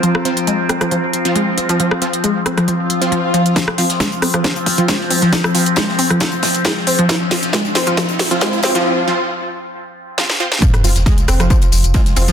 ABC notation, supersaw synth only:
X:1
M:4/4
L:1/16
Q:1/4=136
K:Cphr
V:1 name="Supersaw synth"
[F,CF]2 [F,CF] z8 [F,CF]4- [F,CF]- | [F,CF]2 [F,CF] z8 [F,CF]4- [F,CF] | z2 [F,CF] z8 [F,CF]4- [F,CF]- | [F,CF]2 [F,CF] z12 z |
z2 [F,CF] z8 [F,CF]4- [F,CF]- | [F,CF]2 [F,CF] z8 z [F,CF] z [F,CF] z | z2 [F,CF] z8 z [F,CF] z [F,CF] z |]